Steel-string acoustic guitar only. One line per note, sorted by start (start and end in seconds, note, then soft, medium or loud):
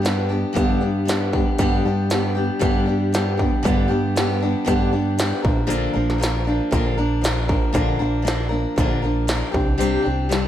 0.02 0.29 G3 medium
0.02 0.30 B3 medium
0.02 0.29 D4 medium
0.02 0.28 G4 medium
0.29 0.53 G3 soft
0.29 0.54 B3 medium
0.29 0.54 D4 medium
0.29 0.55 G4 medium
0.53 0.80 G2 medium
0.53 0.81 D3 medium
0.53 0.81 G3 medium
0.53 0.81 B3 medium
0.53 0.80 D4 loud
0.53 0.79 G4 medium
0.80 1.04 G3 soft
0.80 1.06 B3 medium
0.80 1.06 D4 medium
0.80 1.07 G4 medium
1.05 1.32 G3 medium
1.05 1.33 B3 medium
1.05 1.33 D4 medium
1.05 1.31 G4 medium
1.33 1.58 G3 soft
1.33 1.60 B3 soft
1.33 1.59 D4 medium
1.33 1.59 G4 medium
1.58 1.85 G2 medium
1.58 1.85 D3 medium
1.58 1.85 G3 loud
1.58 1.86 B3 medium
1.58 1.85 D4 loud
1.58 1.84 G4 loud
1.85 2.09 G3 medium
1.85 2.10 B3 medium
1.85 2.11 D4 medium
1.85 2.11 G4 medium
2.10 2.36 G3 medium
2.10 2.36 B3 medium
2.10 2.35 D4 medium
2.10 2.33 G4 medium
2.35 2.59 G3 soft
2.35 2.60 B3 medium
2.35 2.60 D4 medium
2.35 2.61 G4 medium
2.59 2.86 G2 medium
2.59 2.86 D3 medium
2.59 2.87 G3 loud
2.59 2.87 B3 medium
2.59 2.86 D4 medium
2.59 2.84 G4 loud
2.85 3.11 G3 soft
2.85 3.13 B3 soft
2.85 3.13 D4 medium
2.85 3.12 G4 soft
3.12 3.39 G3 medium
3.12 3.40 B3 medium
3.12 3.39 D4 medium
3.12 3.36 G4 medium
3.37 3.63 B3 medium
3.37 3.63 D4 medium
3.37 3.64 G4 medium
3.42 3.63 G3 soft
3.63 3.89 G2 medium
3.63 3.89 D3 loud
3.63 3.90 G3 medium
3.63 3.89 B3 medium
3.63 3.88 D4 loud
3.63 3.87 G4 medium
3.88 4.14 G3 soft
3.88 4.16 B3 medium
3.88 4.15 D4 medium
3.88 4.15 G4 medium
4.16 4.41 G3 medium
4.16 4.41 B3 medium
4.16 4.41 D4 medium
4.16 4.39 G4 medium
4.40 4.65 G3 soft
4.40 4.66 B3 medium
4.40 4.67 D4 medium
4.40 4.67 G4 medium
4.65 4.92 G2 medium
4.65 4.92 D3 loud
4.65 4.93 G3 medium
4.65 4.92 B3 medium
4.65 4.91 D4 loud
4.65 4.90 G4 medium
4.91 5.16 G3 soft
4.91 5.17 B3 soft
4.91 5.19 D4 medium
4.91 5.18 G4 medium
5.18 5.44 G3 medium
5.18 5.44 B3 medium
5.18 5.43 D4 medium
5.18 5.42 G4 medium
5.42 5.66 F3 soft
5.42 5.66 A#3 soft
5.42 5.67 D4 soft
5.42 5.67 A#4 medium
5.67 5.94 A#2 medium
5.67 5.94 D3 medium
5.67 5.94 F3 loud
5.67 5.94 A#3 loud
5.67 5.93 D4 medium
5.67 5.92 A#4 loud
5.93 6.17 F3 soft
5.93 6.18 A#3 medium
5.93 6.19 D4 medium
5.93 6.20 A#4 medium
6.18 6.45 F3 medium
6.18 6.46 A#3 medium
6.18 6.46 D4 medium
6.18 6.43 A#4 medium
6.45 6.72 A#3 medium
6.45 6.73 D4 medium
6.45 6.71 A#4 medium
6.49 6.71 F3 soft
6.71 6.97 A#2 medium
6.71 6.98 D3 medium
6.71 6.98 F3 medium
6.71 6.98 A#3 medium
6.71 6.97 D4 loud
6.71 6.96 A#4 medium
6.98 7.20 F3 soft
6.98 7.22 A#3 medium
6.98 7.22 D4 medium
6.98 7.24 A#4 medium
7.21 7.48 F3 medium
7.21 7.49 A#3 medium
7.21 7.49 D4 medium
7.21 7.47 A#4 medium
7.48 7.73 F3 medium
7.48 7.74 A#3 soft
7.48 7.73 D4 medium
7.48 7.74 A#4 medium
7.73 8.00 A#2 medium
7.73 8.00 D3 loud
7.73 8.00 F3 medium
7.73 8.00 A#3 medium
7.73 7.99 D4 loud
7.73 7.98 A#4 loud
7.99 8.21 F3 soft
7.99 8.23 A#3 medium
7.99 8.24 D4 medium
7.99 8.25 A#4 medium
8.22 8.50 F3 medium
8.22 8.51 A#3 medium
8.22 8.49 D4 medium
8.22 8.48 A#4 medium
8.49 8.77 F3 soft
8.49 8.77 A#3 soft
8.49 8.77 D4 medium
8.49 8.76 A#4 medium
8.76 9.03 A#2 medium
8.76 9.03 D3 medium
8.76 9.04 F3 medium
8.76 9.03 A#3 medium
8.76 9.03 D4 medium
8.76 9.01 A#4 medium
9.02 9.26 F3 soft
9.02 9.27 A#3 soft
9.02 9.28 D4 medium
9.02 9.28 A#4 medium
9.27 9.54 F3 medium
9.27 9.53 A#3 medium
9.27 9.52 D4 medium
9.27 9.51 A#4 medium
9.51 9.78 C4 soft
9.51 9.79 D4 soft
9.51 9.79 G4 medium
9.78 10.05 C3 loud
9.78 10.05 G3 medium
9.78 10.05 C4 medium
9.78 10.03 D4 loud
9.78 10.01 G4 loud
10.02 10.29 C4 medium
10.02 10.29 D4 medium
10.02 10.30 G4 medium
10.29 10.48 G3 medium
10.29 10.48 C4 medium
10.29 10.48 D4 medium
10.29 10.48 G4 medium